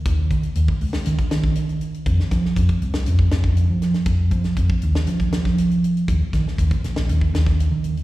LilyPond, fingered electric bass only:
\new Staff \with { instrumentName = "Fingered electric bass" } { \clef bass \time 4/4 \key ees \mixolydian \tempo 4 = 120 ees,8 ees16 r16 ees,16 r16 des,8 ees16 r16 ees4. | f,16 r16 f16 r16 f,16 r16 c,8 f,8 f,8. f8 r16 | f,8 f16 r16 f,16 r16 ees,8 f16 r16 f4. | ees,16 r16 ees16 r16 ees,16 r16 bes,,8 ees,8 ees,8. ees8 r16 | }